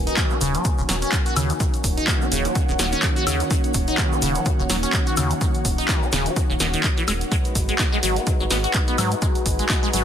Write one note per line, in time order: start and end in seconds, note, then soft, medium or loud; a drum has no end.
0.00 7.28 D#3 medium
0.00 7.28 A#3 medium
0.00 7.28 C#4 medium
0.00 9.13 D#4 medium
0.00 0.56 F#4 medium
0.00 10.04 F#4 medium
0.00 0.64 G#5 medium
0.07 0.19 D#4 medium
0.07 closed hi-hat medium
0.07 shaker soft
0.17 0.32 D#3 medium
0.17 kick loud
0.17 snare medium
0.17 clap loud
0.17 closed hi-hat medium
0.17 shaker soft
0.30 0.36 D#4 loud
0.30 shaker soft
0.41 0.57 D#1 loud
0.41 0.56 C#3 loud
0.41 open hi-hat loud
0.41 shaker loud
0.54 0.66 F#3 medium
0.54 9.16 C#5 medium
0.54 closed hi-hat medium
0.54 shaker soft
0.65 0.69 D#2 medium
0.65 kick loud
0.65 closed hi-hat medium
0.65 shaker medium
0.69 8.67 F#5 medium
0.78 0.85 D#1 medium
0.78 0.82 C#3 medium
0.78 shaker soft
0.89 1.05 D#1 loud
0.89 0.96 F#3 medium
0.89 snare medium
0.89 open hi-hat loud
0.89 shaker medium
1.02 1.14 C#4 medium
1.02 closed hi-hat medium
1.02 shaker soft
1.12 1.17 D#3 medium
1.12 kick loud
1.12 clap loud
1.12 closed hi-hat medium
1.12 shaker medium
1.26 1.35 F#4 medium
1.26 closed hi-hat soft
1.26 shaker soft
1.36 1.52 D#2 medium
1.36 1.51 C#3 loud
1.36 snare soft
1.36 open hi-hat loud
1.36 high woodblock medium
1.36 shaker medium
1.50 1.53 F#3 medium
1.50 closed hi-hat medium
1.50 shaker soft
1.60 1.64 D#3 medium
1.60 kick loud
1.60 closed hi-hat medium
1.60 shaker medium
1.74 closed hi-hat soft
1.74 shaker soft
1.84 2.00 D#1 loud
1.84 kick medium
1.84 open hi-hat loud
1.84 shaker medium
1.97 2.09 D#4 medium
1.97 closed hi-hat medium
1.97 shaker soft
2.07 2.22 D#3 medium
2.07 kick loud
2.07 snare medium
2.07 clap loud
2.07 closed hi-hat medium
2.07 shaker medium
2.21 2.27 D#4 loud
2.21 shaker soft
2.31 2.48 D#1 medium
2.31 2.46 C#3 loud
2.31 open hi-hat loud
2.31 shaker medium
2.45 2.57 F#3 medium
2.45 closed hi-hat medium
2.45 shaker soft
2.55 2.60 D#2 medium
2.55 kick loud
2.55 closed hi-hat medium
2.55 shaker soft
2.69 2.75 D#1 medium
2.69 2.72 C#3 medium
2.69 shaker soft
2.79 2.95 D#1 loud
2.79 2.87 F#3 medium
2.79 snare medium
2.79 open hi-hat loud
2.79 shaker loud
2.92 3.04 C#4 medium
2.92 closed hi-hat medium
2.92 shaker soft
3.02 3.07 D#3 medium
3.02 kick loud
3.02 clap loud
3.02 closed hi-hat medium
3.02 shaker medium
3.16 3.25 F#4 medium
3.16 closed hi-hat soft
3.16 shaker soft
3.27 3.43 D#2 medium
3.27 3.42 C#3 loud
3.27 snare soft
3.27 open hi-hat loud
3.27 high woodblock medium
3.27 shaker loud
3.40 3.44 F#3 medium
3.40 closed hi-hat medium
3.40 shaker soft
3.50 3.55 D#3 medium
3.50 kick loud
3.50 closed hi-hat medium
3.50 shaker medium
3.64 closed hi-hat soft
3.64 shaker soft
3.74 3.90 D#1 loud
3.74 kick medium
3.74 open hi-hat loud
3.74 shaker medium
3.87 4.00 D#4 medium
3.87 closed hi-hat medium
3.87 shaker soft
3.98 4.13 D#3 medium
3.98 kick loud
3.98 snare medium
3.98 clap loud
3.98 closed hi-hat medium
3.98 shaker medium
4.12 4.17 D#4 loud
4.12 shaker soft
4.22 4.38 D#1 medium
4.22 4.37 C#3 loud
4.22 open hi-hat loud
4.22 shaker medium
4.35 4.47 F#3 medium
4.35 closed hi-hat medium
4.35 shaker soft
4.46 4.50 D#2 medium
4.46 kick loud
4.46 closed hi-hat medium
4.46 shaker medium
4.59 4.66 D#1 medium
4.59 4.63 C#3 medium
4.59 shaker soft
4.70 4.86 D#1 loud
4.70 4.77 F#3 medium
4.70 snare medium
4.70 open hi-hat loud
4.70 shaker loud
4.83 4.95 C#4 medium
4.83 closed hi-hat medium
4.83 shaker soft
4.93 4.98 D#3 medium
4.93 kick loud
4.93 clap loud
4.93 closed hi-hat medium
4.93 shaker medium
5.07 5.16 F#4 medium
5.07 closed hi-hat soft
5.07 shaker soft
5.17 5.33 D#2 medium
5.17 5.32 C#3 loud
5.17 snare soft
5.17 open hi-hat loud
5.17 high woodblock medium
5.17 shaker loud
5.30 5.34 F#3 medium
5.30 closed hi-hat medium
5.30 shaker soft
5.41 5.46 D#3 medium
5.41 kick loud
5.41 closed hi-hat medium
5.41 shaker medium
5.54 closed hi-hat soft
5.54 shaker soft
5.65 5.81 D#1 loud
5.65 kick medium
5.65 open hi-hat loud
5.65 shaker medium
5.78 5.90 D#4 medium
5.78 closed hi-hat medium
5.78 shaker soft
5.88 6.04 D#3 medium
5.88 kick loud
5.88 snare medium
5.88 clap loud
5.88 closed hi-hat medium
5.88 shaker medium
6.02 6.08 D#4 loud
6.02 shaker soft
6.12 6.29 D#1 medium
6.12 6.27 C#3 loud
6.12 snare medium
6.12 open hi-hat loud
6.12 shaker medium
6.26 6.38 F#3 medium
6.26 closed hi-hat medium
6.26 shaker soft
6.36 6.41 D#2 medium
6.36 kick loud
6.36 closed hi-hat medium
6.36 shaker medium
6.50 6.56 D#1 medium
6.50 6.53 C#3 medium
6.50 shaker soft
6.60 6.76 D#1 loud
6.60 6.68 D#3 medium
6.60 snare medium
6.60 open hi-hat loud
6.60 shaker loud
6.73 6.82 D#3 medium
6.73 closed hi-hat medium
6.73 shaker soft
6.84 6.88 D#3 loud
6.84 kick loud
6.84 clap loud
6.84 closed hi-hat medium
6.84 shaker soft
6.97 7.03 E3 medium
6.97 closed hi-hat soft
6.97 shaker soft
7.08 7.24 D#1 medium
7.08 7.12 G#3 loud
7.08 snare soft
7.08 open hi-hat loud
7.08 high woodblock medium
7.08 shaker loud
7.21 closed hi-hat medium
7.21 shaker soft
7.31 7.36 G#3 medium
7.31 10.04 G#3 medium
7.31 10.04 D#4 medium
7.31 10.04 F#4 medium
7.31 10.04 B4 medium
7.31 kick loud
7.31 closed hi-hat medium
7.31 shaker medium
7.45 closed hi-hat soft
7.45 shaker soft
7.55 7.71 G#1 loud
7.55 kick medium
7.55 open hi-hat loud
7.55 shaker loud
7.68 7.75 G#3 medium
7.68 closed hi-hat soft
7.68 shaker soft
7.79 7.84 G#3 medium
7.79 kick loud
7.79 snare medium
7.79 clap loud
7.79 closed hi-hat medium
7.79 shaker medium
7.92 7.98 G#3 loud
7.92 10.04 B4 medium
7.92 shaker soft
8.03 8.19 G#1 medium
8.03 8.18 F#3 loud
8.03 open hi-hat loud
8.03 shaker loud
8.16 8.28 B3 medium
8.16 closed hi-hat medium
8.16 shaker soft
8.27 8.31 G#2 medium
8.27 10.04 G#5 medium
8.27 kick loud
8.27 closed hi-hat medium
8.27 shaker medium
8.40 8.47 G#1 medium
8.40 8.44 F#3 medium
8.40 shaker soft
8.50 8.67 G#1 loud
8.50 8.58 B3 medium
8.50 snare medium
8.50 open hi-hat loud
8.50 shaker medium
8.64 8.76 F#4 medium
8.64 closed hi-hat soft
8.64 shaker soft
8.74 8.79 G#3 medium
8.74 kick loud
8.74 clap loud
8.74 closed hi-hat medium
8.74 shaker soft
8.87 8.96 B3 medium
8.87 closed hi-hat soft
8.87 shaker soft
8.98 9.14 G#2 medium
8.98 9.13 F#3 loud
8.98 snare soft
8.98 open hi-hat loud
8.98 high woodblock medium
8.98 shaker medium
9.11 9.15 B3 medium
9.11 closed hi-hat medium
9.11 shaker soft
9.22 9.26 G#3 medium
9.22 kick loud
9.22 closed hi-hat medium
9.22 shaker medium
9.35 closed hi-hat soft
9.35 shaker soft
9.46 9.62 G#1 loud
9.46 kick medium
9.46 open hi-hat loud
9.46 shaker medium
9.59 9.65 G#3 medium
9.59 closed hi-hat medium
9.59 shaker soft
9.69 9.74 G#3 medium
9.69 kick loud
9.69 snare medium
9.69 clap loud
9.69 closed hi-hat medium
9.69 shaker soft
9.83 9.89 G#3 loud
9.83 shaker soft
9.93 10.04 G#1 medium
9.93 10.04 F#3 loud
9.93 open hi-hat loud
9.93 shaker medium